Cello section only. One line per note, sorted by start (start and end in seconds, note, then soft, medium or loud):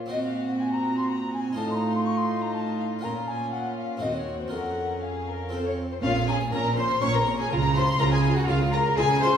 0.00 1.53 A#2 medium
1.57 3.00 A2 medium
3.03 4.02 A#2 medium
4.02 4.52 D#2 soft
4.52 5.80 F2 soft
6.02 6.46 A#2 medium
6.52 6.96 A#2 medium
7.01 7.45 A#2 medium
7.51 7.94 C#3 loud
8.00 8.43 C#3 medium
8.49 8.92 C#3 medium
8.98 9.37 C#3 medium